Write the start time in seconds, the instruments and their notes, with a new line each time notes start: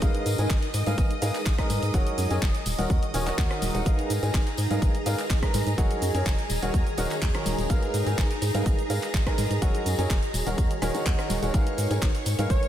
Already playing: ambient pad D#4, string machine D#5 D#6
0.02 fm bass G#1, grand piano G#3 D#4 G#4 A#4 B4 F5, ambient pad G#4, kick, closed hi-hat, tambourine, shaker
0.15 closed hi-hat, shaker
0.26 fm bass G#2, open hi-hat, tambourine, shaker
0.36 fm bass G#2, grand piano G#3 D#4 G#4 A#4 B4 G#5, ambient pad D#5, closed hi-hat, tambourine, shaker
0.50 fm bass G#1, kick, clap, closed hi-hat, shaker
0.62 closed hi-hat, shaker
0.74 fm bass G#2, open hi-hat, tambourine, shaker
0.87 fm bass G#2, grand piano G#3 D#4 G#4 A#4 B4 F5, closed hi-hat, tambourine, high conga, shaker
0.98 fm bass G#1, kick, closed hi-hat, tambourine, shaker
1.11 closed hi-hat, shaker
1.22 fm bass G#2, grand piano G#3 D#4 G#4 A#4 B4 F5, open hi-hat, tambourine, shaker
1.35 clap, closed hi-hat, tambourine, shaker
1.46 fm bass G#1, kick, clap, closed hi-hat, tambourine, shaker
1.58 grand piano G#3 D#4 G#4 A#4 B4 A#5, kick, cross-stick, closed hi-hat, shaker
1.70 fm bass G#2, open hi-hat, tambourine, high conga, shaker
1.82 fm bass G#2, closed hi-hat, tambourine, shaker
1.93 fm bass F#1, grand piano F#3 D#4 G#4 A#4 C#5 F#5, ambient pad F#4, kick, closed hi-hat, tambourine, shaker
2.07 closed hi-hat, shaker
2.18 fm bass F#2, open hi-hat, tambourine, shaker
2.27 fm bass F#2, grand piano F#3 D#4 G#4 A#4 C#5 G#5, ambient pad C#5 G#5 A#5, closed hi-hat, tambourine
2.31 shaker
2.42 fm bass F#1, kick, clap, closed hi-hat, tambourine, shaker
2.55 closed hi-hat, shaker
2.66 fm bass D#1, ambient pad D#4, open hi-hat, tambourine, shaker
2.78 fm bass D#1, grand piano D#3 D#4 F#4 A#4 C#5 F#5, closed hi-hat, tambourine, high conga, shaker
2.90 fm bass D#2, kick, closed hi-hat, tambourine, shaker
3.03 closed hi-hat, shaker
3.14 fm bass D#1, grand piano D#3 D#4 F#4 A#4 C#5 G#5, open hi-hat, tambourine, shaker
3.26 grand piano D#3 D#4 F#4 A#4 C#5 F#5, clap, closed hi-hat, tambourine, shaker
3.38 fm bass D#2, grand piano D#3 D#4 F#4 F#5, kick, clap, closed hi-hat, shaker
3.51 cross-stick, closed hi-hat, shaker
3.62 fm bass D#1, open hi-hat, tambourine, high conga, shaker
3.75 fm bass D#1, grand piano G#3 D#4 F#4 A#4 C#5 F#5, closed hi-hat, tambourine, shaker
3.85 fm bass G#1, grand piano G#3 D#4 G#4 A#4 B4 F5, ambient pad G#4, string machine G#4 A#5, kick, closed hi-hat, tambourine, shaker
3.99 closed hi-hat, shaker
4.05 ambient pad D#5
4.10 fm bass G#2, open hi-hat, tambourine, shaker
4.23 fm bass G#2, grand piano G#3 D#4 G#4 A#4 B4 G#5, closed hi-hat, tambourine, shaker
4.34 fm bass G#1, kick, clap, closed hi-hat, tambourine, shaker
4.47 closed hi-hat, shaker
4.57 fm bass G#2, open hi-hat, tambourine, shaker
4.70 fm bass G#2, grand piano G#3 D#4 G#4 A#4 B4 F5, closed hi-hat, tambourine, high conga, shaker
4.82 fm bass G#1, kick, closed hi-hat, tambourine, shaker
4.95 closed hi-hat, shaker
5.06 fm bass G#2, grand piano G#3 D#4 G#4 A#4 B4 F5, open hi-hat, tambourine, shaker
5.18 clap, closed hi-hat, tambourine, shaker
5.30 fm bass G#1, kick, clap, closed hi-hat, tambourine, shaker
5.43 grand piano G#3 D#4 G#4 A#4 B4 A#5, kick, cross-stick, closed hi-hat, shaker
5.54 fm bass G#2, open hi-hat, tambourine, high conga, shaker
5.67 fm bass G#2, closed hi-hat, tambourine, shaker
5.78 fm bass F#1, grand piano F#3 D#4 G#4 A#4 C#5 F#5, ambient pad F#4, kick, closed hi-hat, tambourine, shaker
5.91 closed hi-hat, shaker
6.02 fm bass F#2, ambient pad A#5, open hi-hat, tambourine, shaker
6.11 fm bass F#2, grand piano F#3 D#4 G#4 A#4 C#5 G#5, ambient pad C#5 G#5, closed hi-hat, tambourine
6.15 shaker
6.25 fm bass F#1, kick, clap, closed hi-hat, tambourine, shaker
6.39 closed hi-hat, shaker
6.50 fm bass D#1, ambient pad D#4, open hi-hat, tambourine, shaker
6.62 fm bass D#1, grand piano D#3 D#4 F#4 A#4 C#5 F#5, closed hi-hat, tambourine, high conga, shaker
6.69 ambient pad A#4
6.74 fm bass D#2, kick, closed hi-hat, tambourine, shaker
6.87 closed hi-hat, shaker
6.97 fm bass D#1, grand piano D#3 D#4 F#4 A#4 C#5 F#5, open hi-hat, tambourine, shaker
7.11 clap, closed hi-hat, tambourine, shaker
7.22 fm bass D#2, kick, clap, closed hi-hat, shaker
7.35 grand piano D#3 D#4 F#4 A#4 C#5 A#5, cross-stick, closed hi-hat, shaker
7.46 fm bass D#1, open hi-hat, tambourine, high conga, shaker
7.59 fm bass D#1, closed hi-hat, tambourine, shaker
7.69 fm bass G#1, grand piano G#3 D#4 G#4 A#4 B4 F5, ambient pad G#4, kick, closed hi-hat, tambourine, shaker
7.83 closed hi-hat, shaker
7.94 fm bass G#2, open hi-hat, tambourine, shaker
8.06 fm bass G#2, grand piano G#3 D#4 G#4 A#4 B4 G#5, closed hi-hat, tambourine, shaker
8.17 fm bass G#1, ambient pad D#5, kick, clap, closed hi-hat, tambourine, shaker
8.31 closed hi-hat, shaker
8.42 fm bass G#2, open hi-hat, tambourine, shaker
8.54 fm bass G#2, grand piano G#3 D#4 G#4 A#4 B4 F5, closed hi-hat, tambourine, high conga, shaker
8.66 fm bass G#1, kick, closed hi-hat, tambourine, shaker
8.79 closed hi-hat, shaker
8.90 fm bass G#2, grand piano G#3 D#4 G#4 A#4 B4 F5, open hi-hat, tambourine, shaker
9.02 clap, closed hi-hat, tambourine, shaker
9.14 fm bass G#1, kick, clap, closed hi-hat, shaker
9.27 grand piano G#3 D#4 G#4 A#4 B4 A#5, kick, cross-stick, closed hi-hat, shaker
9.38 fm bass G#2, open hi-hat, tambourine, high conga, shaker
9.51 fm bass G#2, closed hi-hat, tambourine, shaker
9.62 fm bass F#1, grand piano F#3 D#4 G#4 A#4 C#5 F#5, ambient pad F#4, kick, closed hi-hat, tambourine, shaker
9.75 ambient pad C#5, closed hi-hat, shaker
9.84 fm bass F#2, ambient pad G#5, open hi-hat, tambourine, shaker
9.95 fm bass F#2, grand piano F#3 D#4 G#4 A#4 C#5 G#5, ambient pad A#5
9.99 closed hi-hat, tambourine, shaker
10.10 fm bass F#1, kick, clap, closed hi-hat, tambourine, shaker
10.23 closed hi-hat, shaker
10.34 fm bass D#1, ambient pad D#4, open hi-hat, tambourine, shaker
10.47 fm bass D#1, grand piano D#3 D#4 F#4 A#4 C#5 F#5, closed hi-hat, tambourine, high conga, shaker
10.58 fm bass D#2, kick, closed hi-hat, tambourine, shaker
10.71 closed hi-hat, shaker
10.82 fm bass D#1, grand piano D#3 D#4 F#4 A#4 C#5 G#5, cross-stick, open hi-hat, tambourine, shaker
10.94 grand piano D#3 D#4 F#4 A#4 C#5 F#5, closed hi-hat, tambourine, shaker
11.06 fm bass D#2, grand piano D#3 D#4, kick, clap, closed hi-hat, shaker
11.19 cross-stick, closed hi-hat, shaker
11.30 fm bass D#1, open hi-hat, tambourine, high conga, shaker
11.43 fm bass D#1, grand piano G#3 D#4 F#4 A#4 C#5 F#5, closed hi-hat, tambourine, shaker
11.54 fm bass G#1, grand piano G#3 D#4 G#4 A#4 B4 F5, ambient pad G#4, string machine C#5 C#6, kick, closed hi-hat, tambourine, shaker
11.65 ambient pad D#5, closed hi-hat, shaker
11.78 fm bass G#2, open hi-hat, tambourine, shaker
11.91 fm bass G#2, grand piano G#3 D#4 G#4 A#4 B4 G#5, closed hi-hat, tambourine, shaker
12.02 fm bass G#1, kick, clap, closed hi-hat, tambourine, shaker
12.15 closed hi-hat, shaker
12.26 fm bass G#2, open hi-hat, tambourine, shaker
12.39 fm bass G#2, grand piano G#3 D#4 G#4 A#4 B4 F5, closed hi-hat, tambourine, high conga, shaker
12.50 fm bass G#1, digital synth lead C#5, kick, closed hi-hat, tambourine, shaker
12.63 closed hi-hat, shaker